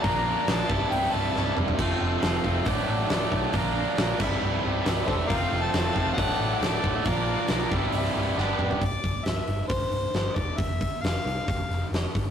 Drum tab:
CC |----------------|x---------------|------x---------|----------------|
HH |o---o---o-------|----o---o---o---|o---o-------o---|o---o---o---o---|
SD |----o----o--o---|----o-------o---|----o-------o---|----o-------o---|
T2 |--------------o-|----------------|----------------|----------------|
FT |---------------o|----------------|----------------|----------------|
BD |o-----o---------|o-----o-o-----o-|o-----o-------o-|o-----o-o-----o-|

CC |----------------|----------------|----------------|
HH |o---o---o-------|o-o-o-o-o-o-o-o-|o-o-o-o-o-o-o-o-|
SD |----o----o--o---|----o-------o---|----o-----o-o---|
T2 |--------------o-|----------------|----------------|
FT |---------------o|----------------|----------------|
BD |o-----o---------|o-o-----o-----o-|o-o-----o-----o-|